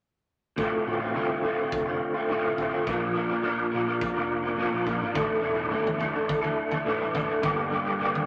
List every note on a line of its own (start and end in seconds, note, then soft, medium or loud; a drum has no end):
0.56 0.71 D1 medium
0.56 1.13 D2 medium
0.56 1.13 A2 medium
0.56 0.85 D3 medium
0.56 0.86 A3 medium
0.56 0.88 C4 medium
0.56 0.89 F4 medium
0.56 kick medium
0.86 1.15 A1 medium
0.86 1.03 D3 medium
0.86 1.02 A3 medium
0.86 1.01 C4 medium
0.86 1.00 F4 medium
1.00 1.15 A3 medium
1.00 1.15 C4 medium
1.00 1.17 F4 medium
1.04 1.14 D3 soft
1.14 1.41 C2 medium
1.14 1.72 D2 medium
1.14 1.72 A2 medium
1.14 1.41 D3 medium
1.14 1.42 A3 medium
1.14 1.44 C4 medium
1.14 1.46 F4 medium
1.42 1.60 D3 medium
1.42 1.59 A3 medium
1.42 1.58 C4 medium
1.42 1.56 F4 medium
1.57 1.87 A3 soft
1.57 1.86 C4 medium
1.57 1.84 F4 medium
1.61 1.88 D3 medium
1.72 1.97 F1 medium
1.72 kick loud
1.86 2.17 D3 medium
1.86 2.16 A3 medium
1.86 2.15 C4 medium
1.86 2.13 F4 medium
2.14 2.29 D3 soft
2.14 2.30 A3 medium
2.14 2.31 C4 medium
2.14 2.31 F4 medium
2.29 2.72 D2 medium
2.29 2.72 A2 medium
2.29 2.47 D3 medium
2.29 2.45 A3 medium
2.29 2.44 C4 medium
2.29 2.43 F4 medium
2.44 2.57 D3 medium
2.44 2.58 A3 medium
2.44 2.59 C4 medium
2.44 2.60 F4 medium
2.58 2.73 D3 medium
2.58 2.73 A3 medium
2.58 2.71 C4 medium
2.58 2.70 F4 medium
2.58 kick medium
2.71 2.86 D3 medium
2.71 2.86 A3 medium
2.71 2.85 C4 medium
2.71 2.84 F4 medium
2.86 3.25 A#1 medium
2.86 3.40 A#2 medium
2.86 3.41 F3 medium
2.86 3.13 A#3 medium
2.86 3.15 D4 medium
2.86 3.15 F4 medium
2.86 3.16 A#4 medium
2.86 kick loud
3.14 3.31 A#3 medium
3.14 3.30 D4 medium
3.14 3.28 F4 medium
3.14 3.27 A#4 medium
3.29 3.55 A#2 medium
3.29 3.42 A#3 medium
3.29 3.44 D4 medium
3.29 3.43 F4 medium
3.29 3.44 A#4 medium
3.41 4.00 A#2 medium
3.41 4.00 F3 medium
3.41 3.70 A#3 medium
3.41 3.72 D4 medium
3.41 3.72 F4 medium
3.41 3.73 A#4 medium
3.71 4.11 A#1 medium
3.71 3.87 A#3 medium
3.71 3.87 D4 medium
3.71 3.85 F4 medium
3.71 3.84 A#4 medium
3.85 4.17 A#3 medium
3.85 4.16 D4 medium
3.85 4.14 F4 medium
3.85 4.12 A#4 medium
4.01 kick loud
4.14 4.66 F1 medium
4.14 4.45 D4 medium
4.14 4.43 F4 medium
4.14 4.42 A#4 medium
4.18 4.45 A#3 medium
4.43 4.57 A#3 medium
4.43 4.58 D4 medium
4.43 4.58 F4 medium
4.43 4.59 A#4 medium
4.57 5.00 A#2 medium
4.57 5.01 F3 medium
4.57 4.73 A#3 medium
4.57 4.73 D4 medium
4.57 4.71 F4 medium
4.57 4.70 A#4 loud
4.71 4.98 A#1 medium
4.71 4.83 A#3 medium
4.71 4.85 D4 medium
4.71 4.86 F4 medium
4.71 4.87 A#4 medium
4.84 5.01 A#3 medium
4.84 5.01 D4 medium
4.84 4.99 F4 medium
4.84 4.98 A#4 medium
4.84 kick medium
4.99 5.14 G#1 medium
4.99 5.14 A#3 soft
4.99 5.15 D4 medium
4.99 5.13 F4 medium
4.99 5.13 A#4 medium
5.13 5.28 A1 medium
5.13 5.69 A2 medium
5.13 5.69 E3 medium
5.13 5.40 A3 medium
5.13 5.41 D4 medium
5.13 5.42 E4 medium
5.13 5.43 A4 medium
5.13 kick loud
5.13 floor tom medium
5.41 5.74 E1 medium
5.41 5.58 A3 medium
5.41 5.57 D4 medium
5.41 5.56 E4 medium
5.41 5.54 A4 medium
5.55 5.72 D4 medium
5.55 5.72 E4 medium
5.55 5.72 A4 medium
5.59 5.70 A3 medium
5.70 5.98 G1 medium
5.70 6.28 A2 medium
5.70 6.29 E3 medium
5.70 5.97 A3 medium
5.70 5.99 D4 medium
5.70 5.99 E4 medium
5.70 6.01 A4 medium
5.87 floor tom medium
5.98 6.15 A3 medium
5.98 6.15 D4 medium
5.98 6.13 E4 medium
5.98 6.12 A4 medium
5.98 floor tom medium
6.13 6.43 A3 soft
6.13 6.44 D4 medium
6.13 6.42 E4 medium
6.13 6.40 A4 medium
6.29 6.54 D2 medium
6.29 kick loud
6.29 floor tom medium
6.41 6.73 A3 medium
6.41 6.73 D4 medium
6.41 6.71 E4 medium
6.41 6.70 A4 medium
6.41 floor tom medium
6.71 6.85 A3 medium
6.71 6.86 D4 medium
6.71 6.87 E4 medium
6.71 6.87 A4 medium
6.71 floor tom medium
6.85 7.29 A2 medium
6.85 7.29 E3 medium
6.85 7.01 A3 medium
6.85 7.01 D4 medium
6.85 6.99 E4 medium
6.85 6.98 A4 loud
6.99 7.12 A3 medium
6.99 7.14 D4 medium
6.99 7.14 E4 medium
6.99 7.15 A4 medium
7.13 7.30 A3 medium
7.13 7.29 D4 medium
7.13 7.27 E4 medium
7.13 7.26 A4 medium
7.13 kick medium
7.13 floor tom medium
7.27 7.42 A3 medium
7.27 7.43 D4 medium
7.27 7.42 E4 medium
7.27 7.41 A4 medium
7.41 7.81 G1 medium
7.41 7.97 G2 medium
7.41 7.98 D3 medium
7.41 7.69 G3 medium
7.41 7.70 A#3 medium
7.41 7.72 D4 medium
7.41 7.72 G4 loud
7.41 kick loud
7.41 floor tom medium
7.70 7.87 G3 medium
7.70 7.86 A#3 medium
7.70 7.86 D4 medium
7.70 7.84 G4 medium
7.85 8.12 G2 medium
7.85 7.99 G3 medium
7.85 8.00 A#3 medium
7.85 8.01 D4 medium
7.85 8.01 G4 medium
7.99 8.26 G2 medium
7.99 8.26 D3 medium
7.99 8.26 G3 medium
7.99 8.26 A#3 medium
7.99 8.26 D4 medium
7.99 8.26 G4 medium
8.15 floor tom medium